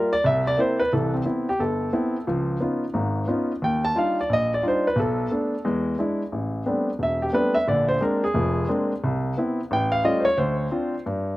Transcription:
Already playing: G3 A#3 F4 A#4
0.13 D5
0.24 C2 E5
0.47 D5
0.58 A#3 C4 E4 C5
0.80 B4
0.93 C2 E3 A4
1.14 C4
1.25 B3 C4 E4
1.49 G4
1.59 G1 A4
1.93 B3 C4 E4
2.27 C#2 F3
2.60 B3 C#4 D#4 F4
2.94 G#1 G#2
3.27 B3 C#4 D#4 F4
3.62 D#2 G5
3.85 A5
3.95 G3 D4 D#4 F4 F5
4.21 D5
4.29 A#1 D#5
4.54 D5
4.62 G3 D4 D#4 F4
4.68 C5
4.87 B4
4.96 B1 A4
5.31 A3 B3 D4
5.65 E2 G#3
5.99 G#3 D4 E4
6.32 A1
6.66 G3 A3 B3 C4 D4
6.99 E1 E5
7.22 G4
7.33 G3 A3 B3 C4 D4 B4
7.55 E5
7.67 A#1 D3 D5
7.89 C5
8.00 G#3 A#3 C4 D4 A#4
8.24 G#4
8.34 F1 F2
8.69 G#3 A#3 C4 D4
9.04 C2
9.38 B3 C4 E4
9.71 A1 G5
9.92 F5
10.04 G3 A3 C#4 F4 D#5
10.20 C5
10.25 C#5
10.38 D2 C5
10.71 C4 D4 F4
11.06 G2

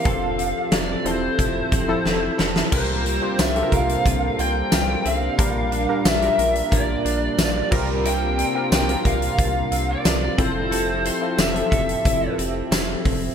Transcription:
Already playing: A#3 C4 E4 G4 F5
0.05 F1 F3 C4 F4 A4, kick, closed hi-hat
0.38 C4, closed hi-hat
0.72 F1 E4 D5, snare, closed hi-hat
1.05 E1 F3 C4 E4 A4 C5, closed hi-hat
1.39 F1 E4, kick, closed hi-hat
1.72 F1 C4, kick, closed hi-hat
1.88 F3 C4 E4 A4
2.05 F1 E4, snare
2.38 F1 A4, snare
2.56 snare
2.72 C2 C3 G3 A#3 C4 D4 F4 G4 A#4 C5, kick, crash
3.05 C4, closed hi-hat
3.22 C4 F4 G4 C5
3.39 C2 F4 E5, snare, closed hi-hat, tambourine
3.55 C4 F4 G4 A4, closed hi-hat
3.63 A#4
3.72 C2 A#4 F5, kick, closed hi-hat
3.89 closed hi-hat
4.05 C2 F4, kick, closed hi-hat
4.39 C2 C4 G5, closed hi-hat
4.72 C2 F4, snare, closed hi-hat, tambourine
5.05 C2 C4 F5, closed hi-hat
5.38 A#1 A#2 G3 A#3 D4 F4 G4 A#4, kick, closed hi-hat
5.72 D4, closed hi-hat
5.89 D4 F4 G4 A#4
6.05 A#1 F4 E5, snare, closed hi-hat, tambourine
6.22 D4 F4 G4 A#4, closed hi-hat
6.38 A#1 A#4, closed hi-hat
6.55 closed hi-hat
6.72 A#1 F4 D5, kick, closed hi-hat
7.05 A#1 D4, closed hi-hat
7.38 A#1 F4, snare, closed hi-hat, tambourine
7.71 C2 C3 G3 C4 F4 G4 A#4, kick, crash
8.05 G3 A#4 G5, closed hi-hat
8.38 C4, closed hi-hat
8.55 C4 F4 G4 A#4
8.72 C2 F4 G5, snare, closed hi-hat, tambourine
8.88 C4 F4 G4 A#4, closed hi-hat
9.05 C2 A#4 F5, kick, closed hi-hat
9.22 closed hi-hat
9.38 C2 F4, kick, closed hi-hat
9.72 C2 C4, closed hi-hat
9.91 D5
10.05 C2 F4, snare, closed hi-hat, tambourine
10.38 F1 F3 C4 E4 F4 G4 A4 C5 E5, kick, closed hi-hat
10.71 C4 A4, closed hi-hat
11.05 C4 C5, closed hi-hat
11.21 C4 E4 F4 A4
11.38 F1 E4 E5, snare, closed hi-hat, tambourine
11.54 F3 C4 E4 A4, closed hi-hat
11.71 F1 A4, kick, closed hi-hat
11.89 closed hi-hat
12.05 F1 E4, kick, closed hi-hat
12.38 F1 C4, closed hi-hat
12.71 F1 E4, snare, closed hi-hat, tambourine
13.05 F1 C4, kick, open hi-hat

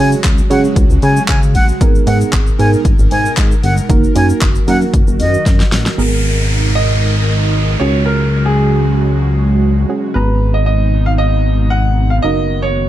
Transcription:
Already playing: C#3 F#3 G#3 C#4 F#4
0.00 C#3 G#4 C#5
0.12 shaker
0.24 C#2, kick, clap, closed hi-hat, shaker
0.38 shaker
0.50 C#3 C#4 F#4 G#4 C#5 F#5, open hi-hat, shaker
0.64 shaker
0.76 C#2, kick, closed hi-hat, shaker
0.90 C#2, shaker
1.02 C#3 G#5, open hi-hat, shaker
1.17 shaker
1.28 C#3 G#5, kick, clap, closed hi-hat, shaker
1.43 shaker
1.55 A1 F#5, open hi-hat, shaker
1.69 shaker
1.81 G#1 B2 B3 D#4 G#4 A#4, kick, closed hi-hat, shaker
1.95 shaker
2.07 G#2 B3 D#4 G#4 A#4 F#5, open hi-hat, shaker
2.21 shaker
2.33 G#1, kick, clap, closed hi-hat, shaker
2.47 shaker
2.59 G#2 B3 D#4 G#4 A#4 G#5, open hi-hat, shaker
2.73 shaker
2.85 G#1, kick, closed hi-hat, shaker
2.99 G#1, shaker
3.11 G#2 G#5, open hi-hat, shaker
3.25 shaker
3.37 G#2, kick, clap, closed hi-hat, shaker
3.51 shaker
3.63 G1 F#5, open hi-hat, shaker
3.77 shaker
3.89 F#1 D#3 F#3 A#3 D#4 F#4 A#4, kick, closed hi-hat, shaker
4.04 shaker
4.15 F#2 A#3 D#4 F#4 A#4 G#5, open hi-hat, shaker
4.29 shaker
4.42 F#1, kick, clap, closed hi-hat, shaker
4.55 shaker
4.68 F#2 A#3 D#4 F#4 A#4 F#5, open hi-hat, shaker
4.82 shaker
4.94 F#1, kick, closed hi-hat, shaker
5.07 F#1, shaker
5.20 F#2 D#5, open hi-hat, shaker
5.34 shaker
5.46 F#2, kick, snare, closed hi-hat, shaker
5.60 snare, shaker
5.72 A1, snare, open hi-hat, shaker
5.86 snare, shaker
5.98 G#1 B2 G#3 B3 D#4 G#4 A#4, downlifter
6.75 D#5
7.79 C#2 C#3 F#3 C#4 F#4 G#4 C#5
8.06 A#4
8.46 G#4
9.89 C#4 F#4 G#4
10.14 G#1 B2 B3 D#4 G#4 B4 A#5
10.54 D#5
10.66 D#5
11.06 F5
11.18 D#5
11.70 F#5
12.10 F5
12.22 F#1 D#3 F#3 D#4 F#4 A#4 D#5
12.62 C#5

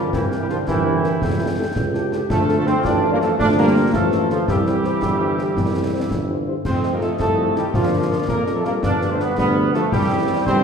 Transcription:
Already playing: D3 F3 A#4 D5
0.12 C2 C3 E3 E4 A#4 G5, concert bass drum, snare
0.31 E4 G4 A#4, snare
0.40 E3 G3 G4
0.49 D3 F3 E4 F4 G4 A#4, snare
0.67 G1 C3 E3 E4 A#4 G5, concert bass drum, snare
0.85 E4 G4 A#4
1.03 E4 G4 A#4, snare
1.22 C#2 A4 G5, concert bass drum, snare
1.39 E4 G4 A4
1.58 E4 G4 A4
1.76 C#2, concert bass drum, snare
1.93 E4 G4 A4, snare
2.12 E4 G4 A4, snare
2.30 D2 F3 A3 F4 A4 F5, concert bass drum, snare, crash
2.48 D4 F4 A4, snare
2.57 F3 A3 A4
2.66 A3 C4 D4 F4 A4 C5, snare
2.84 A1 A3 D4 F4 D5 F5, concert bass drum, snare
3.03 D4 F4 A4
3.12 G3 A#3 A#4
3.20 F3 A3 D4 F4 A4, snare
3.38 D2 A3 D4 F4 D5 F5, concert bass drum, snare
3.57 G3 A#3 D4 F4 A4 A#4
3.75 D4 F4 A4
3.94 A1 F3 A3 F4 A4 F5, concert bass drum, snare
4.11 D4 F4 A4, snare
4.29 D3 F3 D4 F4 A4, snare
4.48 C2 E3 G3 G4 E5, concert bass drum, snare
4.66 E4 G4 C5, snare
4.84 E4 G4 C5, snare
5.02 G1, concert bass drum, snare
5.20 E4 G4 C5
5.38 E4 G4 C5, snare
5.57 C2, concert bass drum, snare
5.74 E4 G4 C5
5.93 E4 G4 C5
6.11 G1, concert bass drum, snare
6.29 E4 G4 C5
6.46 E4 G4 C5
6.65 F2 A3 C4 A4 C5 D#5, concert bass drum, snare, crash
6.82 D#4 F4 A4, snare
6.92 G3 A#3 A#4
7.01 F3 A3 D#4 F4 A4, snare
7.19 C2 F3 A3 A4, concert bass drum, snare
7.37 D#4 F4 A4
7.55 D#3 G3 D#4 F4 G4 A4, snare
7.73 A#1 D3 F3 F4 A#4 D5, concert bass drum, snare
7.92 D4 F4 A#4
8.10 D4 F4 A#4
8.28 F2 F3 A#3 A#4, concert bass drum, snare
8.46 D4 F4 A#4, snare
8.55 F3 A3 A4
8.65 G3 A#3 D4 F4 A#4, snare
8.82 G1 B3 D4 B4 D5 F5, concert bass drum, snare
9.01 F4 G4 B4, snare
9.10 A3 C4 C5
9.19 G3 B3 F4 G4 B4, snare
9.37 D2 G3 B3 B4, concert bass drum, snare
9.56 F4 G4 B4
9.73 F3 A3 F4 G4 A4 B4, snare
9.91 C2 E3 G3 G4 C5 E5, concert bass drum, snare
10.11 E4 G4 C5
10.29 E4 G4 C5
10.46 G1 G3 C4 C5, concert bass drum, snare

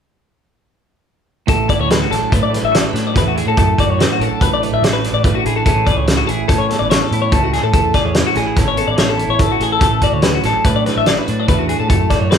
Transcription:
1.47 A1 A2 A4, kick, closed hi-hat
1.68 E4 D5, kick, closed hi-hat
1.79 D2 F#4 C#5
1.88 F#3 B4, snare, closed hi-hat
2.02 F#4
2.10 A1 D4 A4, snare, closed hi-hat
2.30 A2 A3 B4, kick, closed hi-hat
2.43 D5
2.50 A2, closed hi-hat
2.54 B4, snare
2.63 A1 E5
2.72 F#4, snare, closed hi-hat
2.76 D5
2.86 B4
2.94 A2 D4, snare, closed hi-hat
3.07 D5
3.14 E2 A2 B4, kick, snare, closed hi-hat
3.28 F#4
3.36 E4 G#4, closed hi-hat
3.46 A2 F#4 A4
3.57 F#2 A2 A4, kick, closed hi-hat
3.78 F#4 D5, kick, closed hi-hat
3.88 F#2 C#5
3.99 F#3 B4, snare, closed hi-hat
4.12 F#4
4.20 A1 D4 A4, closed hi-hat
4.41 A1 A3 B4, kick, closed hi-hat
4.53 D5
4.62 A2 B4, closed hi-hat
4.72 A1 E5
4.81 A1 F#4 D5, snare, closed hi-hat
4.93 B4
5.04 D4, snare, closed hi-hat
5.13 A1 D5
5.24 A2 B4, kick, closed hi-hat
5.35 F#4
5.45 A1 E4 G#4, closed hi-hat
5.56 F#4 A4
5.66 A1 A2 E3 C#4 E4 G#4 A4, kick, closed hi-hat
5.86 G#4 D5, kick, closed hi-hat
5.97 C#2 C#5
6.06 E3 B4, snare, closed hi-hat
6.17 F#4
6.27 A1 E4 G#4, closed hi-hat
6.48 A2 C#4 A4, kick, snare, closed hi-hat
6.58 C#5
6.70 E2 A4, snare, closed hi-hat
6.79 G#1 D5
6.90 A4 C#5, snare, closed hi-hat
7.00 A4
7.11 A2 E4, closed hi-hat
7.22 C#5
7.32 C#2 A2 A4, kick, closed hi-hat
7.44 F#4
7.53 G#4 A4, snare, closed hi-hat
7.63 A2 A4
7.72 E2 A2 A4, kick, closed hi-hat
7.94 G#4 D5, kick, snare, closed hi-hat
8.05 E2 C#5
8.14 E3 B4, snare, closed hi-hat
8.27 F#4
8.35 A1 C#4 G#4, snare, closed hi-hat
8.46 E4
8.56 G#1 C#4 A4, kick, snare, closed hi-hat
8.68 C#5
8.76 E2 A4, closed hi-hat
8.87 A1 D5
8.96 A1 A4 C#5, snare, closed hi-hat
9.09 A4
9.17 E4, closed hi-hat
9.28 A1 C#5
9.39 A2 A4, kick, closed hi-hat
9.52 F#4
9.60 A1 G#4 A4, closed hi-hat
9.72 A4
9.79 A1 A2 A4, kick, closed hi-hat
10.01 F#4 D5, kick, closed hi-hat
10.13 D2 C#5
10.22 F#3 B4, snare, closed hi-hat
10.34 F#4
10.43 A1 D4 A4, snare, closed hi-hat
10.64 A2 A3 B4, kick, closed hi-hat
10.76 D5
10.86 A2 B4, snare, closed hi-hat
10.96 A1 E5
11.06 F#4 D5, snare, closed hi-hat
11.19 B4
11.28 A2 D4, closed hi-hat
11.40 D5
11.48 E2 A2 B4, kick, closed hi-hat
11.59 F#4
11.69 F#4 G#4, closed hi-hat
11.80 A2 A4
11.89 F#2 A2 A4, kick, closed hi-hat
12.10 F#4 D5, kick, snare, closed hi-hat
12.20 F#2 C#5
12.31 F#3 B4, snare, closed hi-hat

